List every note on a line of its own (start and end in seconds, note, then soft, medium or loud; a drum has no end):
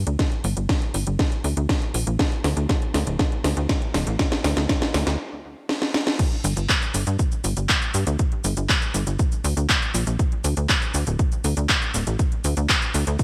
0.07 0.17 D2 medium
0.07 closed hi-hat medium
0.19 kick loud
0.19 snare medium
0.19 closed hi-hat medium
0.32 closed hi-hat soft
0.44 0.55 G1 loud
0.44 open hi-hat loud
0.57 0.67 G1 medium
0.57 closed hi-hat medium
0.69 kick loud
0.69 snare medium
0.69 closed hi-hat medium
0.82 closed hi-hat soft
0.94 1.05 G1 medium
0.94 open hi-hat loud
1.07 1.17 G1 medium
1.07 closed hi-hat medium
1.19 kick loud
1.19 snare medium
1.19 closed hi-hat medium
1.32 closed hi-hat soft
1.44 1.55 D2 medium
1.44 open hi-hat loud
1.57 1.67 D2 medium
1.57 closed hi-hat medium
1.69 kick loud
1.69 snare medium
1.69 closed hi-hat medium
1.82 closed hi-hat soft
1.94 2.05 A#1 medium
1.94 open hi-hat loud
2.07 2.17 A#1 medium
2.07 closed hi-hat medium
2.19 kick loud
2.19 snare medium
2.19 closed hi-hat medium
2.32 closed hi-hat soft
2.44 2.55 D2 medium
2.44 snare medium
2.44 open hi-hat loud
2.57 2.67 D2 medium
2.57 closed hi-hat soft
2.69 kick loud
2.69 snare medium
2.69 closed hi-hat medium
2.82 closed hi-hat soft
2.94 3.05 D2 medium
2.94 snare medium
2.94 open hi-hat loud
3.07 3.17 D1 medium
3.07 closed hi-hat medium
3.19 kick loud
3.19 snare medium
3.19 closed hi-hat medium
3.32 closed hi-hat soft
3.44 3.55 D2 medium
3.44 snare medium
3.44 open hi-hat loud
3.57 3.67 D2 medium
3.57 closed hi-hat medium
3.69 kick loud
3.69 snare medium
3.69 closed hi-hat medium
3.82 closed hi-hat soft
3.94 4.05 D1 medium
3.94 snare medium
3.94 open hi-hat loud
4.07 4.17 A1 medium
4.07 closed hi-hat medium
4.19 kick loud
4.19 snare medium
4.19 closed hi-hat medium
4.32 snare medium
4.32 closed hi-hat soft
4.44 4.55 D2 loud
4.44 snare medium
4.44 open hi-hat loud
4.57 4.67 D2 medium
4.57 snare medium
4.57 closed hi-hat medium
4.69 kick loud
4.69 snare loud
4.69 closed hi-hat medium
4.82 snare medium
4.82 closed hi-hat soft
4.94 5.05 D2 medium
4.94 snare loud
4.94 open hi-hat loud
5.07 5.17 D2 medium
5.07 snare medium
5.07 closed hi-hat medium
5.69 snare medium
5.82 snare medium
5.94 snare medium
6.07 snare medium
6.19 kick loud
6.19 closed hi-hat medium
6.19 crash loud
6.19 cabasa soft
6.32 closed hi-hat soft
6.44 6.55 G1 medium
6.44 open hi-hat loud
6.44 cabasa medium
6.57 6.67 G1 medium
6.57 closed hi-hat medium
6.57 cabasa soft
6.69 kick loud
6.69 clap loud
6.69 closed hi-hat medium
6.69 cabasa soft
6.82 closed hi-hat soft
6.82 cabasa soft
6.94 7.05 G1 medium
6.94 open hi-hat loud
6.94 cabasa medium
7.07 7.17 G2 medium
7.07 closed hi-hat medium
7.07 cabasa soft
7.19 kick loud
7.19 closed hi-hat medium
7.19 cabasa soft
7.32 closed hi-hat soft
7.32 cabasa soft
7.44 7.55 G1 medium
7.44 open hi-hat loud
7.44 cabasa medium
7.57 7.67 G1 medium
7.57 closed hi-hat medium
7.57 cabasa soft
7.69 kick loud
7.69 clap loud
7.69 closed hi-hat medium
7.69 cabasa soft
7.82 closed hi-hat soft
7.82 cabasa soft
7.94 8.05 G2 medium
7.94 open hi-hat medium
7.94 cabasa medium
8.07 8.17 D2 medium
8.07 closed hi-hat medium
8.07 cabasa soft
8.19 kick loud
8.19 closed hi-hat medium
8.19 cabasa soft
8.32 closed hi-hat soft
8.44 8.55 G1 loud
8.44 open hi-hat loud
8.44 cabasa medium
8.57 8.67 G1 medium
8.57 closed hi-hat medium
8.57 cabasa soft
8.69 kick loud
8.69 clap loud
8.69 closed hi-hat medium
8.69 cabasa soft
8.82 closed hi-hat soft
8.82 cabasa soft
8.94 9.05 G1 medium
8.94 open hi-hat medium
8.94 cabasa medium
9.07 9.17 G1 medium
9.07 closed hi-hat medium
9.07 cabasa soft
9.19 kick loud
9.19 closed hi-hat medium
9.19 cabasa soft
9.32 closed hi-hat soft
9.32 cabasa soft
9.44 9.55 D2 medium
9.44 open hi-hat loud
9.44 cabasa medium
9.57 9.67 D2 medium
9.57 closed hi-hat medium
9.57 cabasa soft
9.69 kick loud
9.69 clap loud
9.69 closed hi-hat medium
9.69 cabasa soft
9.82 closed hi-hat soft
9.82 cabasa soft
9.94 10.05 A#1 medium
9.94 open hi-hat loud
9.94 cabasa medium
10.07 10.17 A#1 medium
10.07 closed hi-hat medium
10.07 cabasa soft
10.19 kick loud
10.19 closed hi-hat medium
10.19 cabasa soft
10.32 closed hi-hat soft
10.44 10.55 D2 loud
10.44 open hi-hat loud
10.44 cabasa medium
10.57 10.67 D2 medium
10.57 closed hi-hat medium
10.57 cabasa soft
10.69 kick loud
10.69 clap loud
10.69 closed hi-hat medium
10.69 cabasa soft
10.82 closed hi-hat soft
10.82 cabasa soft
10.94 11.05 D2 medium
10.94 open hi-hat medium
10.94 cabasa medium
11.07 11.17 D1 medium
11.07 closed hi-hat medium
11.07 cabasa soft
11.19 kick loud
11.19 closed hi-hat medium
11.19 cabasa soft
11.32 closed hi-hat soft
11.32 cabasa soft
11.44 11.55 D2 medium
11.44 open hi-hat loud
11.44 cabasa medium
11.57 11.67 D2 medium
11.57 closed hi-hat medium
11.57 cabasa soft
11.69 kick loud
11.69 clap loud
11.69 closed hi-hat medium
11.69 cabasa soft
11.82 closed hi-hat soft
11.82 cabasa soft
11.94 12.05 D1 medium
11.94 open hi-hat medium
11.94 cabasa medium
12.07 12.17 A1 medium
12.07 closed hi-hat medium
12.07 cabasa soft
12.19 kick loud
12.19 closed hi-hat medium
12.19 cabasa soft
12.32 closed hi-hat soft
12.44 12.55 D2 medium
12.44 open hi-hat loud
12.44 cabasa medium
12.57 12.67 D2 medium
12.57 closed hi-hat medium
12.57 cabasa soft
12.69 kick loud
12.69 clap loud
12.69 closed hi-hat medium
12.69 cabasa soft
12.82 closed hi-hat soft
12.82 cabasa soft
12.94 13.05 D2 loud
12.94 open hi-hat medium
12.94 cabasa medium
13.07 13.17 D2 medium
13.07 closed hi-hat soft
13.07 cabasa soft
13.19 kick loud
13.19 closed hi-hat medium
13.19 cabasa soft